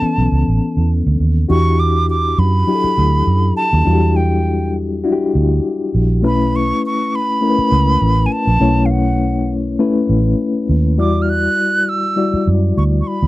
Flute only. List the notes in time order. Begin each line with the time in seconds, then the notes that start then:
Already playing: A5
1.50 C#6
1.80 D6
2.10 D6
2.39 B5
3.56 A5
4.16 G5
6.26 B5
6.56 C#6
6.86 C#6
7.15 B5
8.26 G#5
8.32 A5
8.86 F5
8.91 F#5
11.00 D6
11.22 F6
11.29 F#6
11.89 E6
12.78 C#6
13.01 C#6
13.07 B5